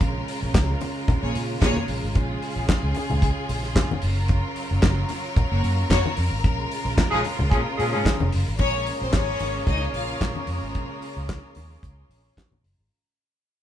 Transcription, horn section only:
7.11 F3 G#3 C#4 G#4
7.50 F3 G#3 C#4 G#4
7.77 F3 G#3 C#4 G#4
7.92 F3 G#3 C#4 G#4
8.58 A#3 C#4 G#4 C#5

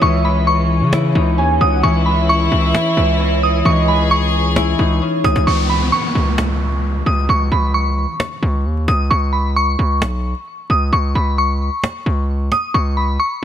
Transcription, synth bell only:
0.02 C#6
0.25 B5
0.47 C#6
1.61 D#6
1.83 C#6
2.06 B5
2.29 C#6
3.43 D#6
3.66 C#6
3.88 B5
4.11 C#6
5.25 D#6
5.47 C#6
5.70 B5
5.92 C#6
7.07 D#6
7.30 C#6
7.52 B5
7.74 C#6
8.88 D#6
9.11 C#6
9.33 B5
9.56 C#6
10.71 D#6
10.93 C#6
11.15 B5
11.38 C#6
12.52 D#6
12.74 C#6
12.97 B5
13.20 C#6

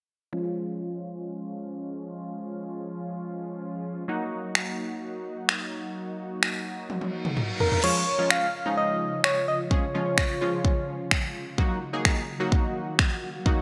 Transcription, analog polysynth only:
0.33 F3 G#3 C#4 F4
4.08 F#3 A#3 D#4 F#4
7.83 F3 G#3 C#4 F4
8.18 F3 G#3 C#4 F4
8.66 F3 G#3 C#4 D#4
9.71 F3 G#3 C#4 G#4
9.94 F3 G#3 C#4 F4
10.41 F3 G#3 C#4 F4
11.58 F#3 A#3 D#4 F#4
11.93 F#3 A#3 D#4 G#4
12.40 F#3 A#3 D#4 F#4
13.46 F#3 A#3 D#4 F#4

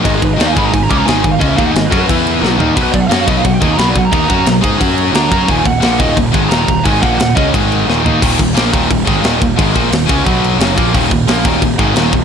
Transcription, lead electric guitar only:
0.05 D#5
0.15 G#4
0.25 B4
0.34 D#5
0.42 D5
0.47 F5
0.53 G#5
0.58 B5
0.66 A#5
0.73 G#5
0.82 A#5
0.91 D6
0.99 A#5
1.06 G#5
1.31 F5
1.40 D#5
1.49 E5
1.56 F5
1.66 F#5
1.73 G#5
1.79 D#5
1.85 B4
1.92 G#4
2.01 B4
2.83 B4
2.92 D5
3.00 F#5
3.08 F5
3.14 F#5
3.21 F5
3.27 D#5
3.37 F5
3.46 F#5
3.55 G5
3.63 G#5
3.73 A#5
3.79 B5
3.89 D5
3.97 F#5
4.05 A#5
5.15 A#5
5.50 G#5
5.67 F#5
5.81 F#5
5.98 D#5
6.50 A#5
6.84 G#5
7.02 F#5
7.18 F#5
7.36 D#5

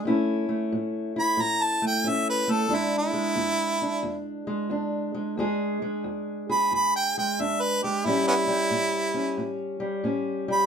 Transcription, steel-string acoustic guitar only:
0.05 A2 A3 C#4 E4
0.49 A3
0.72 A2
1.16 E4
1.37 A2
1.82 A3
2.04 A2 C#4
2.48 A3
2.69 E2 G#3 D4
3.13 G#3
3.36 E2
3.82 D4
4.03 E2
4.47 G#3
4.70 E2 D4
5.14 G#3
5.37 E2 G#3 D4 G#4
5.82 G#3
6.04 E2
6.49 G#4
6.72 E2
7.18 G#3
7.39 E2 D4
7.84 G#3
8.05 A2 G3 C#4
8.47 G3
8.71 A2
9.14 C#4
9.37 A2
9.80 G3
10.04 A2 C#4
10.48 G3

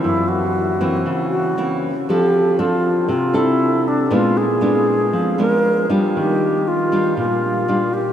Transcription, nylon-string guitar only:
Already playing: E3 A#3 C4
0.04 F#2
0.81 E3 A#3 C4
1.06 C#3
1.58 E3 A#3 C4
2.09 F3 C4 D4 A4
2.59 C4 D4 A4
3.09 C3
3.33 C4 D4 A4
4.11 A#2 G#3 B3 D4
4.61 G#3 B3 D4
5.13 F3
5.38 G#3 B3 D4
5.89 G3 D4 F4
6.16 D#3
6.92 G3 D4 F4
7.17 A#2
7.68 G3 D4 F4

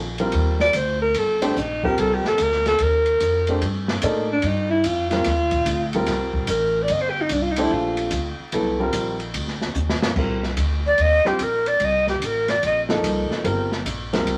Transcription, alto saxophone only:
0.61 D5
0.76 C5
1.02 A#4
1.19 A4
1.44 C4
1.58 D#4
1.85 G4
2.00 A4
2.14 G4
2.28 A4
2.42 A#4
2.68 A4
2.83 A#4
4.32 D4
4.46 D#4
4.70 E4
4.87 F4
5.10 F4
6.50 A#4
6.83 D5
6.91 D#5
7.01 C5
7.10 G4
7.21 D#4
7.32 D4
7.42 F4
7.51 D#4
7.62 E4
7.73 F4

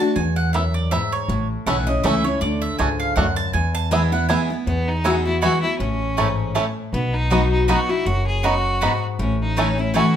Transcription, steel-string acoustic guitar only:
0.00 D4 F#4
0.16 E2
0.54 F#2
0.92 G#2
1.29 A2
1.67 E3 A3 C#4 E4
1.87 C#4 E4
2.03 E3 A3 C#4 E4
2.24 C#4 E4
2.42 D3
2.79 G#2
3.17 F#2
3.54 E2
3.91 E3 G#3 B3 E4
4.12 B3 E4
4.29 E3 G#3 B3 E4
4.50 B3 E4
4.67 E2
5.05 E3 G#3 B3 F#4
5.25 B3 F#4
5.43 E3 G#3 B3 F#4
5.63 B3 F#4
5.80 A2
6.18 G#2
6.56 A2
6.94 B2
7.31 F#3 B3 D#4 F#4
7.68 F#3 B3 D#4 F#4
7.89 D#4 F#4
8.06 F#2
8.44 C#3
8.82 G#2
9.19 A2
9.57 E3 A3 C#4 E4
9.78 C#4 E4
9.94 E3 A3 C#4 E4

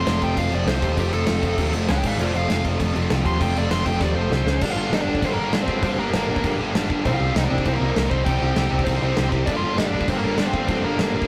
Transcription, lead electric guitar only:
Already playing: C6
0.23 G5
0.38 F5
0.55 D5
0.68 C5
0.84 C5
0.97 G4
1.14 A4
1.90 A#4 G5
2.06 D5 F5
2.20 F4 D5
2.35 F5
3.26 C6
3.42 G5
3.58 D5
3.71 C6
3.85 G5
4.00 D5
4.15 C5
4.62 D4 D5
4.70 F4 F5
4.93 D#4 D#5
5.01 D4 D5
5.24 C4 C5
5.32 A#3 A#4
5.53 D4 D5
5.61 C4 C5
5.83 C4 C5
5.99 A#3 A#4
7.06 C4 C5
7.12 F4 F5
7.37 D#4 D#5
7.45 D4 D5
7.68 C4 C5
7.73 A#3 A#4
8.11 C4 C5
8.24 G4 G5
8.84 C4 C5
9.46 D4 D5
9.53 F4 F5
9.78 D#4 D#5
9.85 D4 D5
10.10 C4 C5
10.16 A#3 A#4
10.38 D4 D5
10.45 C4 C5
10.68 C4 C5
10.83 A#3 A#4

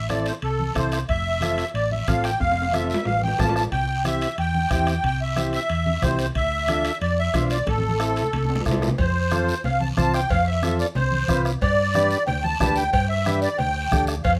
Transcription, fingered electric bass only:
Already playing: A1
0.43 C2
0.76 C2
1.09 F1
1.74 A1
2.08 A1
2.41 F1
3.06 A1
3.40 A1
3.72 C2
4.38 E2
4.71 E2
5.03 C2
5.70 E2
6.03 C2
6.35 D2
7.01 F2
7.34 B1
7.67 A1
8.34 C2
8.66 C2
8.99 F2
9.64 C2
9.97 C2
10.30 F2
10.96 C2
11.29 C2
11.62 G2
12.27 D2
12.61 D2
12.93 G2
13.59 D2
13.92 D2
14.25 F2

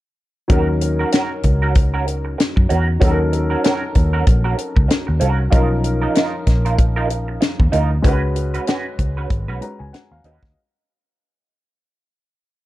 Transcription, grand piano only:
0.48 F#3 C#4 D#4
0.52 A#4
3.00 F#3 C#4 D#4
3.05 A4
3.11 A#4
5.50 F3 C#4 D#4
5.55 A#4
8.02 G#3 C#4 F#4
8.08 B4
9.61 G#3 C#4 F#4 B4 A#5
9.79 G#5
9.93 F#5
10.12 F5
10.25 D#5

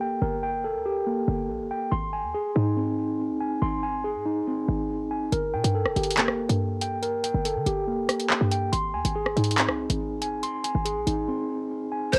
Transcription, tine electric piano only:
Already playing: A#3 G4 A4
0.01 G5
0.22 A#4
0.43 G5
0.64 A4
0.86 G4
1.07 A#3
1.71 G5
1.92 C6
2.13 G#5
2.35 G#4
2.56 D#4
2.77 C4
3.41 G#5
3.62 C6
3.83 G#5
4.04 G#4
4.26 D#4
4.47 C4
5.11 G#5
5.33 A#4
5.54 G5
5.75 A4
5.96 G4
6.18 A#3
6.81 G5
7.03 A#4
7.24 G5
7.45 A4
7.66 G4
7.88 A#3
8.52 G5
8.72 C6
8.94 G#5
9.15 G#4
9.36 D#4
9.58 C4
10.22 G#5
10.43 C6
10.64 G#5
10.85 G#4
11.07 D#4
11.28 C4
11.92 G#5
12.14 A#4

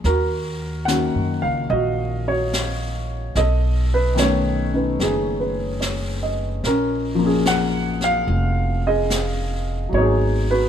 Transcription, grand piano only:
0.05 F#4 A#4
0.85 D#3 A#3 C#4 F#4 F#5
1.42 F5
1.70 F#4 D#5
2.28 F#4 C#5
3.37 A4 D#5
3.94 B4
4.15 D#3 B3 C#4
4.19 A3 C#5
4.72 C#4 D#4
4.76 B4
5.02 D#4 G#4
5.40 B4
5.81 C#5
6.23 D#5
6.66 C#4 A#4
7.15 F3
7.19 A#3
7.23 C#4 G#4
7.47 F#5
8.04 F5
8.87 G#4 D#5
9.89 F#3
9.93 B3 D#4 F#4 C#5
10.01 G#4
10.51 F#4 B4

